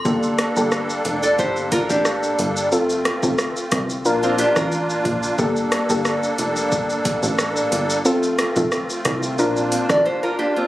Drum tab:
HH |--x---x---x---x-|--x---x---x---x-|--x---x---x---x-|--x---x---x-----|
SH |xxxxxxxxxxxxxxxx|xxxxxxxxxxxxxxxx|xxxxxxxxxxxxxxxx|xxxxxxxxxxxx----|
SD |--r-r-------r---|--r-r-r----r----|--r-r-------r---|--r-r-r----r----|
BD |o-------o-o-----|---o--o----o--o-|o-------o-o-----|---o--o----o----|